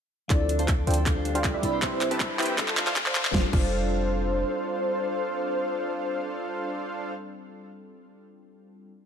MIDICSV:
0, 0, Header, 1, 8, 480
1, 0, Start_track
1, 0, Tempo, 379747
1, 383, Time_signature, 4, 2, 24, 8
1, 11448, End_track
2, 0, Start_track
2, 0, Title_t, "Soft synth lead"
2, 0, Program_c, 0, 80
2, 384, Note_on_c, 0, 74, 100
2, 732, Note_off_c, 0, 74, 0
2, 1950, Note_on_c, 0, 74, 97
2, 2207, Note_off_c, 0, 74, 0
2, 2307, Note_on_c, 0, 72, 100
2, 2654, Note_off_c, 0, 72, 0
2, 3872, Note_on_c, 0, 72, 98
2, 4128, Note_off_c, 0, 72, 0
2, 4228, Note_on_c, 0, 72, 90
2, 4364, Note_off_c, 0, 72, 0
2, 4462, Note_on_c, 0, 72, 106
2, 9023, Note_off_c, 0, 72, 0
2, 11448, End_track
3, 0, Start_track
3, 0, Title_t, "Supersaw synth"
3, 0, Program_c, 1, 81
3, 380, Note_on_c, 1, 65, 90
3, 381, Note_on_c, 1, 62, 99
3, 381, Note_on_c, 1, 69, 90
3, 381, Note_on_c, 1, 72, 90
3, 381, Note_on_c, 1, 77, 109
3, 717, Note_off_c, 1, 62, 0
3, 717, Note_off_c, 1, 65, 0
3, 717, Note_off_c, 1, 69, 0
3, 717, Note_off_c, 1, 72, 0
3, 717, Note_off_c, 1, 77, 0
3, 746, Note_on_c, 1, 69, 80
3, 746, Note_on_c, 1, 81, 96
3, 747, Note_on_c, 1, 62, 90
3, 747, Note_on_c, 1, 65, 81
3, 747, Note_on_c, 1, 72, 82
3, 1075, Note_off_c, 1, 62, 0
3, 1075, Note_off_c, 1, 65, 0
3, 1075, Note_off_c, 1, 69, 0
3, 1075, Note_off_c, 1, 72, 0
3, 1075, Note_off_c, 1, 81, 0
3, 1100, Note_on_c, 1, 79, 111
3, 1101, Note_on_c, 1, 62, 103
3, 1101, Note_on_c, 1, 72, 93
3, 1102, Note_on_c, 1, 65, 91
3, 1102, Note_on_c, 1, 69, 94
3, 1314, Note_off_c, 1, 79, 0
3, 1315, Note_off_c, 1, 62, 0
3, 1315, Note_off_c, 1, 65, 0
3, 1315, Note_off_c, 1, 69, 0
3, 1315, Note_off_c, 1, 72, 0
3, 1339, Note_on_c, 1, 62, 85
3, 1339, Note_on_c, 1, 65, 75
3, 1340, Note_on_c, 1, 67, 77
3, 1340, Note_on_c, 1, 77, 93
3, 1676, Note_off_c, 1, 62, 0
3, 1676, Note_off_c, 1, 65, 0
3, 1676, Note_off_c, 1, 67, 0
3, 1677, Note_off_c, 1, 77, 0
3, 1705, Note_on_c, 1, 65, 87
3, 1706, Note_on_c, 1, 77, 105
3, 1707, Note_on_c, 1, 62, 96
3, 1707, Note_on_c, 1, 67, 85
3, 1707, Note_on_c, 1, 72, 89
3, 1917, Note_off_c, 1, 62, 0
3, 1917, Note_off_c, 1, 65, 0
3, 1917, Note_off_c, 1, 67, 0
3, 1917, Note_off_c, 1, 72, 0
3, 1917, Note_off_c, 1, 77, 0
3, 1945, Note_on_c, 1, 60, 77
3, 1945, Note_on_c, 1, 64, 69
3, 1945, Note_on_c, 1, 71, 69
3, 1946, Note_on_c, 1, 67, 71
3, 1946, Note_on_c, 1, 76, 82
3, 2274, Note_off_c, 1, 60, 0
3, 2274, Note_off_c, 1, 64, 0
3, 2274, Note_off_c, 1, 71, 0
3, 2274, Note_off_c, 1, 76, 0
3, 2275, Note_off_c, 1, 67, 0
3, 2299, Note_on_c, 1, 60, 100
3, 2300, Note_on_c, 1, 64, 92
3, 2300, Note_on_c, 1, 67, 91
3, 2300, Note_on_c, 1, 71, 92
3, 2300, Note_on_c, 1, 76, 108
3, 2636, Note_off_c, 1, 60, 0
3, 2636, Note_off_c, 1, 67, 0
3, 2636, Note_off_c, 1, 76, 0
3, 2637, Note_off_c, 1, 64, 0
3, 2637, Note_off_c, 1, 71, 0
3, 2665, Note_on_c, 1, 81, 97
3, 2666, Note_on_c, 1, 60, 88
3, 2666, Note_on_c, 1, 64, 82
3, 2666, Note_on_c, 1, 67, 81
3, 2666, Note_on_c, 1, 71, 81
3, 2994, Note_off_c, 1, 81, 0
3, 2995, Note_off_c, 1, 60, 0
3, 2995, Note_off_c, 1, 64, 0
3, 2995, Note_off_c, 1, 67, 0
3, 2995, Note_off_c, 1, 71, 0
3, 3021, Note_on_c, 1, 64, 97
3, 3021, Note_on_c, 1, 79, 115
3, 3022, Note_on_c, 1, 60, 100
3, 3022, Note_on_c, 1, 67, 95
3, 3022, Note_on_c, 1, 71, 93
3, 3235, Note_off_c, 1, 60, 0
3, 3235, Note_off_c, 1, 64, 0
3, 3235, Note_off_c, 1, 67, 0
3, 3235, Note_off_c, 1, 71, 0
3, 3235, Note_off_c, 1, 79, 0
3, 3260, Note_on_c, 1, 65, 77
3, 3261, Note_on_c, 1, 62, 85
3, 3261, Note_on_c, 1, 69, 78
3, 3261, Note_on_c, 1, 72, 79
3, 3261, Note_on_c, 1, 77, 94
3, 3597, Note_off_c, 1, 62, 0
3, 3597, Note_off_c, 1, 65, 0
3, 3597, Note_off_c, 1, 69, 0
3, 3597, Note_off_c, 1, 72, 0
3, 3597, Note_off_c, 1, 77, 0
3, 3626, Note_on_c, 1, 72, 88
3, 3626, Note_on_c, 1, 77, 108
3, 3627, Note_on_c, 1, 62, 98
3, 3627, Note_on_c, 1, 65, 89
3, 3627, Note_on_c, 1, 69, 90
3, 3837, Note_off_c, 1, 72, 0
3, 3837, Note_off_c, 1, 77, 0
3, 3838, Note_off_c, 1, 62, 0
3, 3838, Note_off_c, 1, 65, 0
3, 3838, Note_off_c, 1, 69, 0
3, 3867, Note_on_c, 1, 62, 77
3, 3867, Note_on_c, 1, 65, 72
3, 3867, Note_on_c, 1, 69, 72
3, 3867, Note_on_c, 1, 72, 71
3, 3868, Note_on_c, 1, 77, 84
3, 4195, Note_off_c, 1, 62, 0
3, 4195, Note_off_c, 1, 65, 0
3, 4195, Note_off_c, 1, 69, 0
3, 4195, Note_off_c, 1, 72, 0
3, 4196, Note_off_c, 1, 77, 0
3, 4223, Note_on_c, 1, 62, 86
3, 4223, Note_on_c, 1, 65, 80
3, 4223, Note_on_c, 1, 69, 80
3, 4223, Note_on_c, 1, 72, 80
3, 4223, Note_on_c, 1, 77, 96
3, 4361, Note_off_c, 1, 62, 0
3, 4361, Note_off_c, 1, 65, 0
3, 4361, Note_off_c, 1, 69, 0
3, 4361, Note_off_c, 1, 72, 0
3, 4361, Note_off_c, 1, 77, 0
3, 4463, Note_on_c, 1, 65, 82
3, 4463, Note_on_c, 1, 69, 83
3, 4463, Note_on_c, 1, 77, 100
3, 4464, Note_on_c, 1, 62, 87
3, 4464, Note_on_c, 1, 72, 82
3, 9024, Note_off_c, 1, 62, 0
3, 9024, Note_off_c, 1, 65, 0
3, 9024, Note_off_c, 1, 69, 0
3, 9024, Note_off_c, 1, 72, 0
3, 9024, Note_off_c, 1, 77, 0
3, 11448, End_track
4, 0, Start_track
4, 0, Title_t, "Harp"
4, 0, Program_c, 2, 46
4, 382, Note_on_c, 2, 62, 83
4, 508, Note_on_c, 2, 69, 76
4, 618, Note_off_c, 2, 62, 0
4, 623, Note_on_c, 2, 62, 74
4, 747, Note_on_c, 2, 72, 99
4, 857, Note_off_c, 2, 62, 0
4, 862, Note_on_c, 2, 62, 101
4, 987, Note_on_c, 2, 74, 73
4, 1096, Note_off_c, 2, 62, 0
4, 1101, Note_on_c, 2, 62, 76
4, 1221, Note_off_c, 2, 69, 0
4, 1226, Note_on_c, 2, 69, 74
4, 1335, Note_off_c, 2, 62, 0
4, 1340, Note_on_c, 2, 62, 80
4, 1460, Note_off_c, 2, 72, 0
4, 1465, Note_on_c, 2, 72, 99
4, 1575, Note_off_c, 2, 62, 0
4, 1580, Note_on_c, 2, 62, 101
4, 1699, Note_off_c, 2, 74, 0
4, 1704, Note_on_c, 2, 74, 76
4, 1814, Note_off_c, 2, 62, 0
4, 1819, Note_on_c, 2, 62, 82
4, 1945, Note_on_c, 2, 67, 76
4, 2059, Note_on_c, 2, 64, 76
4, 2180, Note_off_c, 2, 72, 0
4, 2185, Note_on_c, 2, 72, 100
4, 2296, Note_off_c, 2, 64, 0
4, 2426, Note_on_c, 2, 76, 79
4, 2541, Note_on_c, 2, 64, 74
4, 2665, Note_on_c, 2, 71, 77
4, 2741, Note_off_c, 2, 72, 0
4, 2776, Note_off_c, 2, 64, 0
4, 2781, Note_on_c, 2, 64, 84
4, 2905, Note_on_c, 2, 72, 103
4, 2981, Note_off_c, 2, 71, 0
4, 3015, Note_off_c, 2, 64, 0
4, 3020, Note_on_c, 2, 64, 101
4, 3142, Note_off_c, 2, 76, 0
4, 3147, Note_on_c, 2, 76, 75
4, 3256, Note_off_c, 2, 62, 0
4, 3381, Note_off_c, 2, 69, 0
4, 3386, Note_on_c, 2, 69, 78
4, 3501, Note_on_c, 2, 62, 78
4, 3621, Note_off_c, 2, 72, 0
4, 3626, Note_on_c, 2, 72, 106
4, 3735, Note_off_c, 2, 62, 0
4, 3740, Note_on_c, 2, 62, 107
4, 3860, Note_off_c, 2, 74, 0
4, 3865, Note_on_c, 2, 74, 81
4, 3976, Note_off_c, 2, 62, 0
4, 3981, Note_on_c, 2, 62, 80
4, 4101, Note_off_c, 2, 69, 0
4, 4106, Note_on_c, 2, 69, 78
4, 4217, Note_off_c, 2, 62, 0
4, 4222, Note_on_c, 2, 62, 100
4, 4458, Note_off_c, 2, 62, 0
4, 4463, Note_on_c, 2, 62, 94
4, 4920, Note_off_c, 2, 67, 0
4, 5325, Note_off_c, 2, 76, 0
4, 6128, Note_off_c, 2, 72, 0
4, 6200, Note_off_c, 2, 74, 0
4, 6321, Note_off_c, 2, 64, 0
4, 6882, Note_off_c, 2, 69, 0
4, 8001, Note_off_c, 2, 62, 0
4, 11448, End_track
5, 0, Start_track
5, 0, Title_t, "Synth keys"
5, 0, Program_c, 3, 88
5, 355, Note_on_c, 3, 53, 80
5, 368, Note_on_c, 3, 60, 73
5, 381, Note_on_c, 3, 62, 71
5, 393, Note_on_c, 3, 64, 71
5, 405, Note_on_c, 3, 69, 87
5, 585, Control_c, 3, 64, 127
5, 1283, Note_off_c, 3, 53, 0
5, 1290, Note_off_c, 3, 60, 0
5, 1296, Note_off_c, 3, 62, 0
5, 1302, Note_off_c, 3, 64, 0
5, 1308, Note_off_c, 3, 69, 0
5, 1316, Note_on_c, 3, 55, 77
5, 1328, Note_on_c, 3, 60, 73
5, 1343, Note_on_c, 3, 62, 71
5, 1355, Note_on_c, 3, 65, 73
5, 1361, Control_c, 3, 64, 0
5, 1368, Note_on_c, 3, 69, 85
5, 1592, Control_c, 3, 64, 127
5, 2004, Note_off_c, 3, 55, 0
5, 2010, Note_off_c, 3, 60, 0
5, 2017, Note_off_c, 3, 62, 0
5, 2023, Note_off_c, 3, 65, 0
5, 2029, Note_off_c, 3, 69, 0
5, 2036, Note_on_c, 3, 55, 90
5, 2048, Note_on_c, 3, 60, 82
5, 2061, Note_on_c, 3, 62, 82
5, 2072, Note_on_c, 3, 64, 84
5, 2077, Control_c, 3, 64, 0
5, 2085, Note_on_c, 3, 83, 101
5, 2310, Control_c, 3, 64, 127
5, 3203, Note_off_c, 3, 55, 0
5, 3209, Note_off_c, 3, 60, 0
5, 3216, Note_off_c, 3, 62, 0
5, 3222, Note_off_c, 3, 64, 0
5, 3228, Note_off_c, 3, 83, 0
5, 3238, Note_on_c, 3, 55, 79
5, 3249, Note_on_c, 3, 60, 73
5, 3263, Note_on_c, 3, 62, 74
5, 3275, Note_on_c, 3, 65, 72
5, 3281, Control_c, 3, 64, 0
5, 3289, Note_on_c, 3, 69, 89
5, 3496, Control_c, 3, 64, 127
5, 4165, Note_off_c, 3, 55, 0
5, 4170, Note_off_c, 3, 60, 0
5, 4177, Note_off_c, 3, 62, 0
5, 4183, Note_off_c, 3, 65, 0
5, 4185, Note_on_c, 3, 55, 88
5, 4190, Note_off_c, 3, 69, 0
5, 4205, Note_on_c, 3, 60, 80
5, 4223, Note_on_c, 3, 62, 82
5, 4241, Control_c, 3, 64, 0
5, 4242, Note_on_c, 3, 65, 80
5, 4260, Note_on_c, 3, 69, 99
5, 4340, Note_off_c, 3, 55, 0
5, 4351, Note_off_c, 3, 60, 0
5, 4361, Note_off_c, 3, 62, 0
5, 4371, Note_off_c, 3, 65, 0
5, 4381, Note_off_c, 3, 69, 0
5, 4423, Note_on_c, 3, 55, 85
5, 4443, Note_on_c, 3, 60, 78
5, 4462, Note_on_c, 3, 62, 77
5, 4469, Control_c, 3, 64, 127
5, 4480, Note_on_c, 3, 65, 78
5, 4500, Note_on_c, 3, 69, 96
5, 9889, Note_off_c, 3, 55, 0
5, 9899, Note_off_c, 3, 60, 0
5, 9908, Note_off_c, 3, 62, 0
5, 9917, Note_off_c, 3, 65, 0
5, 9927, Note_off_c, 3, 69, 0
5, 11237, Control_c, 3, 64, 0
5, 11448, End_track
6, 0, Start_track
6, 0, Title_t, "808-style bass"
6, 0, Program_c, 4, 38
6, 382, Note_on_c, 4, 38, 99
6, 1088, Note_off_c, 4, 38, 0
6, 1102, Note_on_c, 4, 38, 100
6, 2048, Note_off_c, 4, 38, 0
6, 2061, Note_on_c, 4, 36, 106
6, 3020, Note_on_c, 4, 29, 104
6, 3039, Note_off_c, 4, 36, 0
6, 3967, Note_off_c, 4, 29, 0
6, 3982, Note_on_c, 4, 26, 83
6, 4204, Note_off_c, 4, 26, 0
6, 4224, Note_on_c, 4, 29, 100
6, 4361, Note_off_c, 4, 29, 0
6, 4464, Note_on_c, 4, 29, 98
6, 5613, Note_off_c, 4, 29, 0
6, 11448, End_track
7, 0, Start_track
7, 0, Title_t, "Riser"
7, 0, Program_c, 5, 103
7, 382, Note_on_c, 5, 60, 81
7, 4223, Note_off_c, 5, 60, 0
7, 11448, End_track
8, 0, Start_track
8, 0, Title_t, "Drums"
8, 382, Note_on_c, 9, 36, 99
8, 382, Note_on_c, 9, 39, 48
8, 382, Note_on_c, 9, 42, 80
8, 508, Note_off_c, 9, 36, 0
8, 509, Note_off_c, 9, 39, 0
8, 509, Note_off_c, 9, 42, 0
8, 622, Note_on_c, 9, 42, 67
8, 747, Note_off_c, 9, 42, 0
8, 747, Note_on_c, 9, 42, 69
8, 862, Note_on_c, 9, 36, 97
8, 863, Note_off_c, 9, 42, 0
8, 863, Note_on_c, 9, 39, 51
8, 863, Note_on_c, 9, 42, 78
8, 988, Note_off_c, 9, 36, 0
8, 989, Note_off_c, 9, 39, 0
8, 989, Note_off_c, 9, 42, 0
8, 1103, Note_on_c, 9, 42, 51
8, 1145, Note_off_c, 9, 42, 0
8, 1145, Note_on_c, 9, 42, 67
8, 1184, Note_off_c, 9, 42, 0
8, 1184, Note_on_c, 9, 42, 84
8, 1310, Note_off_c, 9, 42, 0
8, 1341, Note_on_c, 9, 36, 97
8, 1344, Note_on_c, 9, 39, 57
8, 1344, Note_on_c, 9, 42, 80
8, 1468, Note_off_c, 9, 36, 0
8, 1470, Note_off_c, 9, 39, 0
8, 1470, Note_off_c, 9, 42, 0
8, 1583, Note_on_c, 9, 42, 67
8, 1709, Note_off_c, 9, 42, 0
8, 1709, Note_on_c, 9, 42, 71
8, 1821, Note_on_c, 9, 36, 98
8, 1823, Note_off_c, 9, 42, 0
8, 1823, Note_on_c, 9, 39, 65
8, 1823, Note_on_c, 9, 42, 83
8, 1948, Note_off_c, 9, 36, 0
8, 1949, Note_off_c, 9, 39, 0
8, 1949, Note_off_c, 9, 42, 0
8, 2062, Note_on_c, 9, 42, 66
8, 2189, Note_off_c, 9, 42, 0
8, 2301, Note_on_c, 9, 36, 100
8, 2303, Note_on_c, 9, 39, 75
8, 2303, Note_on_c, 9, 42, 80
8, 2428, Note_off_c, 9, 36, 0
8, 2429, Note_off_c, 9, 39, 0
8, 2429, Note_off_c, 9, 42, 0
8, 2544, Note_on_c, 9, 39, 81
8, 2544, Note_on_c, 9, 42, 68
8, 2669, Note_off_c, 9, 42, 0
8, 2669, Note_on_c, 9, 42, 66
8, 2670, Note_off_c, 9, 39, 0
8, 2782, Note_on_c, 9, 36, 98
8, 2784, Note_off_c, 9, 42, 0
8, 2784, Note_on_c, 9, 39, 82
8, 2784, Note_on_c, 9, 42, 78
8, 2908, Note_off_c, 9, 36, 0
8, 2910, Note_off_c, 9, 39, 0
8, 2910, Note_off_c, 9, 42, 0
8, 3025, Note_on_c, 9, 39, 89
8, 3025, Note_on_c, 9, 42, 50
8, 3065, Note_off_c, 9, 42, 0
8, 3065, Note_on_c, 9, 42, 67
8, 3104, Note_off_c, 9, 42, 0
8, 3104, Note_on_c, 9, 42, 80
8, 3152, Note_off_c, 9, 39, 0
8, 3230, Note_off_c, 9, 42, 0
8, 3262, Note_on_c, 9, 36, 100
8, 3264, Note_on_c, 9, 39, 91
8, 3264, Note_on_c, 9, 42, 79
8, 3388, Note_off_c, 9, 36, 0
8, 3390, Note_off_c, 9, 39, 0
8, 3390, Note_on_c, 9, 39, 83
8, 3391, Note_off_c, 9, 42, 0
8, 3505, Note_off_c, 9, 39, 0
8, 3505, Note_on_c, 9, 39, 97
8, 3505, Note_on_c, 9, 42, 69
8, 3628, Note_off_c, 9, 39, 0
8, 3628, Note_off_c, 9, 42, 0
8, 3628, Note_on_c, 9, 39, 89
8, 3628, Note_on_c, 9, 42, 71
8, 3743, Note_on_c, 9, 36, 101
8, 3744, Note_off_c, 9, 39, 0
8, 3744, Note_off_c, 9, 42, 0
8, 3744, Note_on_c, 9, 39, 99
8, 3744, Note_on_c, 9, 42, 80
8, 3869, Note_off_c, 9, 36, 0
8, 3869, Note_off_c, 9, 39, 0
8, 3869, Note_on_c, 9, 39, 95
8, 3871, Note_off_c, 9, 42, 0
8, 3985, Note_off_c, 9, 39, 0
8, 3985, Note_on_c, 9, 39, 105
8, 3985, Note_on_c, 9, 42, 62
8, 4109, Note_off_c, 9, 39, 0
8, 4109, Note_on_c, 9, 39, 95
8, 4111, Note_off_c, 9, 42, 0
8, 4224, Note_on_c, 9, 36, 115
8, 4224, Note_on_c, 9, 38, 87
8, 4236, Note_off_c, 9, 39, 0
8, 4350, Note_off_c, 9, 36, 0
8, 4351, Note_off_c, 9, 38, 0
8, 4464, Note_on_c, 9, 36, 118
8, 4464, Note_on_c, 9, 49, 89
8, 4590, Note_off_c, 9, 36, 0
8, 4590, Note_off_c, 9, 49, 0
8, 11448, End_track
0, 0, End_of_file